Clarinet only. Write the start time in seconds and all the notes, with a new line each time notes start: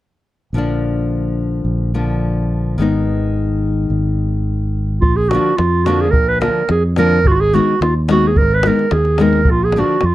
5.01 F4
5.16 G#4
5.29 F#4
5.57 F4
5.85 F#4
6.01 G#4
6.11 A#4
6.28 B4
6.41 A#4
6.71 G#4
6.99 A#4
7.28 F4 F#4
7.33 F#4
7.40 G#4
7.54 F#4
7.82 F4
8.12 F#4
8.27 G#4
8.37 A#4
8.54 B4
8.67 A#4
8.93 G#4
9.22 A#4
9.51 F4
9.64 G#4
9.79 F#4
10.05 F4